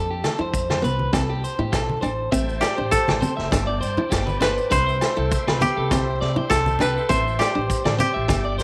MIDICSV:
0, 0, Header, 1, 7, 480
1, 0, Start_track
1, 0, Tempo, 597015
1, 1873, Time_signature, 4, 2, 24, 8
1, 6941, End_track
2, 0, Start_track
2, 0, Title_t, "Tonewheel organ"
2, 0, Program_c, 0, 16
2, 1876, Note_on_c, 0, 81, 69
2, 1877, Note_on_c, 0, 72, 63
2, 1884, Note_on_c, 0, 79, 61
2, 2826, Note_off_c, 0, 72, 0
2, 2826, Note_on_c, 0, 74, 67
2, 3776, Note_off_c, 0, 81, 0
2, 3780, Note_off_c, 0, 74, 0
2, 3798, Note_on_c, 0, 76, 64
2, 3800, Note_on_c, 0, 84, 70
2, 5694, Note_off_c, 0, 76, 0
2, 5716, Note_on_c, 0, 81, 64
2, 6643, Note_off_c, 0, 84, 0
2, 6657, Note_on_c, 0, 86, 70
2, 6941, Note_off_c, 0, 79, 0
2, 6941, Note_off_c, 0, 81, 0
2, 6941, Note_off_c, 0, 86, 0
2, 6941, End_track
3, 0, Start_track
3, 0, Title_t, "Clean electric guitar"
3, 0, Program_c, 1, 27
3, 84, Note_on_c, 1, 67, 61
3, 187, Note_off_c, 1, 67, 0
3, 193, Note_on_c, 1, 69, 58
3, 315, Note_off_c, 1, 69, 0
3, 330, Note_on_c, 1, 72, 68
3, 553, Note_off_c, 1, 72, 0
3, 566, Note_on_c, 1, 72, 62
3, 668, Note_off_c, 1, 72, 0
3, 676, Note_on_c, 1, 71, 70
3, 902, Note_off_c, 1, 71, 0
3, 913, Note_on_c, 1, 69, 78
3, 1035, Note_off_c, 1, 69, 0
3, 1042, Note_on_c, 1, 67, 69
3, 1146, Note_off_c, 1, 67, 0
3, 1157, Note_on_c, 1, 72, 68
3, 1278, Note_off_c, 1, 72, 0
3, 1278, Note_on_c, 1, 67, 57
3, 1385, Note_off_c, 1, 67, 0
3, 1385, Note_on_c, 1, 69, 76
3, 1615, Note_off_c, 1, 69, 0
3, 1618, Note_on_c, 1, 72, 64
3, 1853, Note_off_c, 1, 72, 0
3, 1864, Note_on_c, 1, 76, 86
3, 2097, Note_off_c, 1, 76, 0
3, 2103, Note_on_c, 1, 74, 68
3, 2227, Note_off_c, 1, 74, 0
3, 2230, Note_on_c, 1, 72, 65
3, 2464, Note_off_c, 1, 72, 0
3, 2579, Note_on_c, 1, 72, 77
3, 2704, Note_off_c, 1, 72, 0
3, 2707, Note_on_c, 1, 76, 61
3, 2943, Note_off_c, 1, 76, 0
3, 2950, Note_on_c, 1, 74, 72
3, 3058, Note_off_c, 1, 74, 0
3, 3061, Note_on_c, 1, 72, 79
3, 3295, Note_off_c, 1, 72, 0
3, 3300, Note_on_c, 1, 67, 81
3, 3425, Note_on_c, 1, 71, 67
3, 3430, Note_off_c, 1, 67, 0
3, 3536, Note_off_c, 1, 71, 0
3, 3539, Note_on_c, 1, 72, 65
3, 3774, Note_off_c, 1, 72, 0
3, 3780, Note_on_c, 1, 71, 85
3, 3907, Note_off_c, 1, 71, 0
3, 3910, Note_on_c, 1, 72, 67
3, 4144, Note_off_c, 1, 72, 0
3, 4156, Note_on_c, 1, 69, 72
3, 4264, Note_off_c, 1, 69, 0
3, 4271, Note_on_c, 1, 72, 79
3, 4395, Note_off_c, 1, 72, 0
3, 4401, Note_on_c, 1, 71, 65
3, 4630, Note_off_c, 1, 71, 0
3, 4642, Note_on_c, 1, 69, 70
3, 4747, Note_off_c, 1, 69, 0
3, 4754, Note_on_c, 1, 72, 84
3, 4981, Note_off_c, 1, 72, 0
3, 4994, Note_on_c, 1, 74, 80
3, 5116, Note_off_c, 1, 74, 0
3, 5126, Note_on_c, 1, 72, 68
3, 5227, Note_on_c, 1, 69, 84
3, 5229, Note_off_c, 1, 72, 0
3, 5457, Note_off_c, 1, 69, 0
3, 5471, Note_on_c, 1, 67, 73
3, 5594, Note_off_c, 1, 67, 0
3, 5601, Note_on_c, 1, 69, 66
3, 5706, Note_off_c, 1, 69, 0
3, 5708, Note_on_c, 1, 76, 86
3, 5937, Note_off_c, 1, 76, 0
3, 5949, Note_on_c, 1, 74, 72
3, 6067, Note_off_c, 1, 74, 0
3, 6070, Note_on_c, 1, 72, 67
3, 6302, Note_off_c, 1, 72, 0
3, 6314, Note_on_c, 1, 74, 75
3, 6417, Note_off_c, 1, 74, 0
3, 6420, Note_on_c, 1, 72, 79
3, 6542, Note_off_c, 1, 72, 0
3, 6545, Note_on_c, 1, 76, 69
3, 6779, Note_off_c, 1, 76, 0
3, 6791, Note_on_c, 1, 74, 70
3, 6898, Note_off_c, 1, 74, 0
3, 6901, Note_on_c, 1, 72, 74
3, 6941, Note_off_c, 1, 72, 0
3, 6941, End_track
4, 0, Start_track
4, 0, Title_t, "Koto"
4, 0, Program_c, 2, 107
4, 2097, Note_on_c, 2, 67, 67
4, 2342, Note_on_c, 2, 69, 67
4, 3552, Note_on_c, 2, 71, 78
4, 3737, Note_off_c, 2, 67, 0
4, 3791, Note_on_c, 2, 72, 77
4, 3839, Note_off_c, 2, 71, 0
4, 3872, Note_off_c, 2, 69, 0
4, 4516, Note_on_c, 2, 67, 83
4, 5170, Note_off_c, 2, 72, 0
4, 5223, Note_on_c, 2, 69, 77
4, 5477, Note_on_c, 2, 71, 80
4, 5702, Note_on_c, 2, 72, 85
4, 5750, Note_off_c, 2, 71, 0
4, 5938, Note_off_c, 2, 67, 0
4, 5941, Note_on_c, 2, 67, 73
4, 6428, Note_off_c, 2, 67, 0
4, 6431, Note_on_c, 2, 67, 82
4, 6753, Note_off_c, 2, 69, 0
4, 6941, Note_off_c, 2, 67, 0
4, 6941, Note_off_c, 2, 72, 0
4, 6941, End_track
5, 0, Start_track
5, 0, Title_t, "Nylon-string guitar"
5, 0, Program_c, 3, 24
5, 0, Note_on_c, 3, 62, 75
5, 101, Note_off_c, 3, 62, 0
5, 312, Note_on_c, 3, 64, 57
5, 474, Note_off_c, 3, 64, 0
5, 660, Note_on_c, 3, 59, 66
5, 824, Note_off_c, 3, 59, 0
5, 907, Note_on_c, 3, 60, 80
5, 1068, Note_off_c, 3, 60, 0
5, 1277, Note_on_c, 3, 64, 62
5, 1438, Note_off_c, 3, 64, 0
5, 1628, Note_on_c, 3, 62, 67
5, 1789, Note_off_c, 3, 62, 0
5, 1866, Note_on_c, 3, 60, 89
5, 2028, Note_off_c, 3, 60, 0
5, 2235, Note_on_c, 3, 62, 67
5, 2397, Note_off_c, 3, 62, 0
5, 2591, Note_on_c, 3, 60, 72
5, 2751, Note_off_c, 3, 60, 0
5, 2831, Note_on_c, 3, 62, 84
5, 2992, Note_off_c, 3, 62, 0
5, 3199, Note_on_c, 3, 64, 70
5, 3360, Note_off_c, 3, 64, 0
5, 3543, Note_on_c, 3, 62, 70
5, 3706, Note_off_c, 3, 62, 0
5, 3785, Note_on_c, 3, 62, 82
5, 3947, Note_off_c, 3, 62, 0
5, 4154, Note_on_c, 3, 64, 65
5, 4316, Note_off_c, 3, 64, 0
5, 4512, Note_on_c, 3, 59, 73
5, 4672, Note_off_c, 3, 59, 0
5, 4756, Note_on_c, 3, 60, 85
5, 4914, Note_off_c, 3, 60, 0
5, 5114, Note_on_c, 3, 64, 70
5, 5276, Note_off_c, 3, 64, 0
5, 5467, Note_on_c, 3, 62, 76
5, 5628, Note_off_c, 3, 62, 0
5, 5703, Note_on_c, 3, 60, 94
5, 5865, Note_off_c, 3, 60, 0
5, 6071, Note_on_c, 3, 62, 66
5, 6233, Note_off_c, 3, 62, 0
5, 6420, Note_on_c, 3, 60, 74
5, 6582, Note_off_c, 3, 60, 0
5, 6659, Note_on_c, 3, 62, 82
5, 6821, Note_off_c, 3, 62, 0
5, 6941, End_track
6, 0, Start_track
6, 0, Title_t, "Upright bass"
6, 0, Program_c, 4, 32
6, 0, Note_on_c, 4, 41, 81
6, 175, Note_off_c, 4, 41, 0
6, 313, Note_on_c, 4, 41, 77
6, 644, Note_off_c, 4, 41, 0
6, 669, Note_on_c, 4, 36, 82
6, 894, Note_off_c, 4, 36, 0
6, 912, Note_on_c, 4, 36, 89
6, 1136, Note_off_c, 4, 36, 0
6, 1276, Note_on_c, 4, 45, 66
6, 1382, Note_off_c, 4, 45, 0
6, 1390, Note_on_c, 4, 35, 74
6, 1607, Note_off_c, 4, 35, 0
6, 1628, Note_on_c, 4, 33, 67
6, 1846, Note_off_c, 4, 33, 0
6, 1869, Note_on_c, 4, 33, 96
6, 2095, Note_off_c, 4, 33, 0
6, 2240, Note_on_c, 4, 33, 70
6, 2345, Note_off_c, 4, 33, 0
6, 2481, Note_on_c, 4, 33, 82
6, 2585, Note_off_c, 4, 33, 0
6, 2719, Note_on_c, 4, 30, 80
6, 2824, Note_off_c, 4, 30, 0
6, 2829, Note_on_c, 4, 31, 94
6, 3056, Note_off_c, 4, 31, 0
6, 3066, Note_on_c, 4, 43, 77
6, 3191, Note_off_c, 4, 43, 0
6, 3313, Note_on_c, 4, 31, 87
6, 3537, Note_off_c, 4, 31, 0
6, 3558, Note_on_c, 4, 31, 81
6, 3677, Note_off_c, 4, 31, 0
6, 3792, Note_on_c, 4, 36, 95
6, 4017, Note_off_c, 4, 36, 0
6, 4162, Note_on_c, 4, 36, 85
6, 4266, Note_off_c, 4, 36, 0
6, 4406, Note_on_c, 4, 36, 81
6, 4508, Note_off_c, 4, 36, 0
6, 4640, Note_on_c, 4, 36, 80
6, 4968, Note_off_c, 4, 36, 0
6, 4997, Note_on_c, 4, 48, 86
6, 5116, Note_off_c, 4, 48, 0
6, 5235, Note_on_c, 4, 36, 87
6, 5457, Note_off_c, 4, 36, 0
6, 5476, Note_on_c, 4, 36, 80
6, 5595, Note_off_c, 4, 36, 0
6, 5713, Note_on_c, 4, 33, 103
6, 5936, Note_off_c, 4, 33, 0
6, 6079, Note_on_c, 4, 33, 74
6, 6183, Note_off_c, 4, 33, 0
6, 6317, Note_on_c, 4, 33, 85
6, 6421, Note_off_c, 4, 33, 0
6, 6562, Note_on_c, 4, 33, 80
6, 6661, Note_off_c, 4, 33, 0
6, 6666, Note_on_c, 4, 31, 110
6, 6891, Note_off_c, 4, 31, 0
6, 6907, Note_on_c, 4, 43, 83
6, 6941, Note_off_c, 4, 43, 0
6, 6941, End_track
7, 0, Start_track
7, 0, Title_t, "Drums"
7, 193, Note_on_c, 9, 38, 58
7, 194, Note_on_c, 9, 68, 57
7, 195, Note_on_c, 9, 70, 65
7, 198, Note_on_c, 9, 63, 56
7, 273, Note_off_c, 9, 38, 0
7, 274, Note_off_c, 9, 68, 0
7, 275, Note_off_c, 9, 70, 0
7, 278, Note_off_c, 9, 63, 0
7, 431, Note_on_c, 9, 36, 76
7, 434, Note_on_c, 9, 70, 86
7, 511, Note_off_c, 9, 36, 0
7, 515, Note_off_c, 9, 70, 0
7, 562, Note_on_c, 9, 38, 60
7, 565, Note_on_c, 9, 63, 62
7, 567, Note_on_c, 9, 68, 57
7, 642, Note_off_c, 9, 38, 0
7, 645, Note_off_c, 9, 63, 0
7, 648, Note_off_c, 9, 68, 0
7, 677, Note_on_c, 9, 64, 63
7, 678, Note_on_c, 9, 70, 59
7, 757, Note_off_c, 9, 64, 0
7, 759, Note_off_c, 9, 70, 0
7, 798, Note_on_c, 9, 63, 60
7, 878, Note_off_c, 9, 63, 0
7, 908, Note_on_c, 9, 63, 58
7, 911, Note_on_c, 9, 36, 86
7, 911, Note_on_c, 9, 38, 69
7, 914, Note_on_c, 9, 68, 62
7, 917, Note_on_c, 9, 70, 78
7, 988, Note_off_c, 9, 63, 0
7, 991, Note_off_c, 9, 36, 0
7, 992, Note_off_c, 9, 38, 0
7, 994, Note_off_c, 9, 68, 0
7, 998, Note_off_c, 9, 70, 0
7, 1160, Note_on_c, 9, 70, 64
7, 1240, Note_off_c, 9, 70, 0
7, 1278, Note_on_c, 9, 64, 58
7, 1358, Note_off_c, 9, 64, 0
7, 1389, Note_on_c, 9, 36, 84
7, 1390, Note_on_c, 9, 68, 59
7, 1391, Note_on_c, 9, 38, 65
7, 1391, Note_on_c, 9, 70, 76
7, 1470, Note_off_c, 9, 36, 0
7, 1470, Note_off_c, 9, 68, 0
7, 1471, Note_off_c, 9, 38, 0
7, 1472, Note_off_c, 9, 70, 0
7, 1524, Note_on_c, 9, 63, 55
7, 1604, Note_off_c, 9, 63, 0
7, 1627, Note_on_c, 9, 64, 61
7, 1632, Note_on_c, 9, 68, 60
7, 1639, Note_on_c, 9, 70, 54
7, 1708, Note_off_c, 9, 64, 0
7, 1713, Note_off_c, 9, 68, 0
7, 1719, Note_off_c, 9, 70, 0
7, 1868, Note_on_c, 9, 36, 79
7, 1876, Note_on_c, 9, 70, 105
7, 1948, Note_off_c, 9, 36, 0
7, 1956, Note_off_c, 9, 70, 0
7, 2001, Note_on_c, 9, 70, 28
7, 2082, Note_off_c, 9, 70, 0
7, 2107, Note_on_c, 9, 70, 83
7, 2109, Note_on_c, 9, 38, 67
7, 2109, Note_on_c, 9, 68, 57
7, 2188, Note_off_c, 9, 70, 0
7, 2189, Note_off_c, 9, 68, 0
7, 2190, Note_off_c, 9, 38, 0
7, 2349, Note_on_c, 9, 36, 81
7, 2349, Note_on_c, 9, 70, 107
7, 2430, Note_off_c, 9, 36, 0
7, 2430, Note_off_c, 9, 70, 0
7, 2476, Note_on_c, 9, 63, 75
7, 2482, Note_on_c, 9, 38, 65
7, 2482, Note_on_c, 9, 68, 65
7, 2482, Note_on_c, 9, 70, 30
7, 2556, Note_off_c, 9, 63, 0
7, 2562, Note_off_c, 9, 38, 0
7, 2562, Note_off_c, 9, 68, 0
7, 2562, Note_off_c, 9, 70, 0
7, 2589, Note_on_c, 9, 63, 74
7, 2589, Note_on_c, 9, 64, 70
7, 2595, Note_on_c, 9, 70, 72
7, 2669, Note_off_c, 9, 63, 0
7, 2669, Note_off_c, 9, 64, 0
7, 2676, Note_off_c, 9, 70, 0
7, 2720, Note_on_c, 9, 38, 23
7, 2801, Note_off_c, 9, 38, 0
7, 2822, Note_on_c, 9, 63, 63
7, 2830, Note_on_c, 9, 38, 72
7, 2831, Note_on_c, 9, 36, 88
7, 2832, Note_on_c, 9, 68, 69
7, 2837, Note_on_c, 9, 70, 96
7, 2902, Note_off_c, 9, 63, 0
7, 2910, Note_off_c, 9, 38, 0
7, 2911, Note_off_c, 9, 36, 0
7, 2913, Note_off_c, 9, 68, 0
7, 2918, Note_off_c, 9, 70, 0
7, 3075, Note_on_c, 9, 70, 75
7, 3155, Note_off_c, 9, 70, 0
7, 3194, Note_on_c, 9, 64, 66
7, 3274, Note_off_c, 9, 64, 0
7, 3310, Note_on_c, 9, 70, 97
7, 3312, Note_on_c, 9, 36, 82
7, 3312, Note_on_c, 9, 68, 59
7, 3315, Note_on_c, 9, 38, 67
7, 3391, Note_off_c, 9, 70, 0
7, 3392, Note_off_c, 9, 36, 0
7, 3393, Note_off_c, 9, 68, 0
7, 3396, Note_off_c, 9, 38, 0
7, 3432, Note_on_c, 9, 63, 63
7, 3446, Note_on_c, 9, 70, 30
7, 3512, Note_off_c, 9, 63, 0
7, 3527, Note_off_c, 9, 70, 0
7, 3543, Note_on_c, 9, 64, 66
7, 3553, Note_on_c, 9, 68, 60
7, 3553, Note_on_c, 9, 70, 68
7, 3556, Note_on_c, 9, 38, 65
7, 3624, Note_off_c, 9, 64, 0
7, 3633, Note_off_c, 9, 68, 0
7, 3633, Note_off_c, 9, 70, 0
7, 3636, Note_off_c, 9, 38, 0
7, 3680, Note_on_c, 9, 70, 25
7, 3761, Note_off_c, 9, 70, 0
7, 3793, Note_on_c, 9, 36, 82
7, 3795, Note_on_c, 9, 70, 96
7, 3874, Note_off_c, 9, 36, 0
7, 3875, Note_off_c, 9, 70, 0
7, 3929, Note_on_c, 9, 70, 27
7, 4009, Note_off_c, 9, 70, 0
7, 4031, Note_on_c, 9, 68, 65
7, 4034, Note_on_c, 9, 70, 77
7, 4036, Note_on_c, 9, 38, 65
7, 4111, Note_off_c, 9, 68, 0
7, 4114, Note_off_c, 9, 70, 0
7, 4116, Note_off_c, 9, 38, 0
7, 4274, Note_on_c, 9, 36, 78
7, 4274, Note_on_c, 9, 70, 101
7, 4354, Note_off_c, 9, 36, 0
7, 4355, Note_off_c, 9, 70, 0
7, 4403, Note_on_c, 9, 63, 63
7, 4406, Note_on_c, 9, 68, 64
7, 4406, Note_on_c, 9, 70, 28
7, 4407, Note_on_c, 9, 38, 67
7, 4484, Note_off_c, 9, 63, 0
7, 4486, Note_off_c, 9, 70, 0
7, 4487, Note_off_c, 9, 38, 0
7, 4487, Note_off_c, 9, 68, 0
7, 4511, Note_on_c, 9, 63, 71
7, 4511, Note_on_c, 9, 64, 73
7, 4516, Note_on_c, 9, 70, 68
7, 4591, Note_off_c, 9, 63, 0
7, 4591, Note_off_c, 9, 64, 0
7, 4596, Note_off_c, 9, 70, 0
7, 4753, Note_on_c, 9, 36, 92
7, 4753, Note_on_c, 9, 38, 72
7, 4755, Note_on_c, 9, 68, 69
7, 4755, Note_on_c, 9, 70, 91
7, 4758, Note_on_c, 9, 63, 59
7, 4833, Note_off_c, 9, 36, 0
7, 4834, Note_off_c, 9, 38, 0
7, 4835, Note_off_c, 9, 70, 0
7, 4836, Note_off_c, 9, 68, 0
7, 4839, Note_off_c, 9, 63, 0
7, 4992, Note_on_c, 9, 38, 25
7, 5072, Note_off_c, 9, 38, 0
7, 5117, Note_on_c, 9, 64, 62
7, 5197, Note_off_c, 9, 64, 0
7, 5232, Note_on_c, 9, 36, 86
7, 5232, Note_on_c, 9, 68, 70
7, 5234, Note_on_c, 9, 38, 69
7, 5236, Note_on_c, 9, 70, 89
7, 5313, Note_off_c, 9, 36, 0
7, 5313, Note_off_c, 9, 68, 0
7, 5314, Note_off_c, 9, 38, 0
7, 5316, Note_off_c, 9, 70, 0
7, 5357, Note_on_c, 9, 63, 64
7, 5365, Note_on_c, 9, 70, 28
7, 5437, Note_off_c, 9, 63, 0
7, 5446, Note_off_c, 9, 70, 0
7, 5459, Note_on_c, 9, 64, 73
7, 5471, Note_on_c, 9, 68, 65
7, 5479, Note_on_c, 9, 70, 71
7, 5539, Note_off_c, 9, 64, 0
7, 5552, Note_off_c, 9, 68, 0
7, 5560, Note_off_c, 9, 70, 0
7, 5608, Note_on_c, 9, 70, 23
7, 5689, Note_off_c, 9, 70, 0
7, 5711, Note_on_c, 9, 36, 82
7, 5715, Note_on_c, 9, 70, 88
7, 5792, Note_off_c, 9, 36, 0
7, 5795, Note_off_c, 9, 70, 0
7, 5852, Note_on_c, 9, 70, 25
7, 5932, Note_off_c, 9, 70, 0
7, 5946, Note_on_c, 9, 68, 61
7, 5953, Note_on_c, 9, 38, 67
7, 5957, Note_on_c, 9, 70, 75
7, 6026, Note_off_c, 9, 68, 0
7, 6033, Note_off_c, 9, 38, 0
7, 6037, Note_off_c, 9, 70, 0
7, 6189, Note_on_c, 9, 36, 80
7, 6194, Note_on_c, 9, 70, 98
7, 6269, Note_off_c, 9, 36, 0
7, 6274, Note_off_c, 9, 70, 0
7, 6315, Note_on_c, 9, 63, 67
7, 6316, Note_on_c, 9, 68, 64
7, 6317, Note_on_c, 9, 38, 71
7, 6324, Note_on_c, 9, 70, 29
7, 6395, Note_off_c, 9, 63, 0
7, 6396, Note_off_c, 9, 68, 0
7, 6398, Note_off_c, 9, 38, 0
7, 6405, Note_off_c, 9, 70, 0
7, 6429, Note_on_c, 9, 63, 71
7, 6429, Note_on_c, 9, 64, 71
7, 6431, Note_on_c, 9, 70, 70
7, 6509, Note_off_c, 9, 63, 0
7, 6509, Note_off_c, 9, 64, 0
7, 6511, Note_off_c, 9, 70, 0
7, 6662, Note_on_c, 9, 38, 66
7, 6664, Note_on_c, 9, 68, 67
7, 6665, Note_on_c, 9, 36, 93
7, 6668, Note_on_c, 9, 63, 66
7, 6669, Note_on_c, 9, 70, 90
7, 6743, Note_off_c, 9, 38, 0
7, 6745, Note_off_c, 9, 68, 0
7, 6746, Note_off_c, 9, 36, 0
7, 6749, Note_off_c, 9, 63, 0
7, 6750, Note_off_c, 9, 70, 0
7, 6908, Note_on_c, 9, 38, 29
7, 6909, Note_on_c, 9, 70, 77
7, 6941, Note_off_c, 9, 38, 0
7, 6941, Note_off_c, 9, 70, 0
7, 6941, End_track
0, 0, End_of_file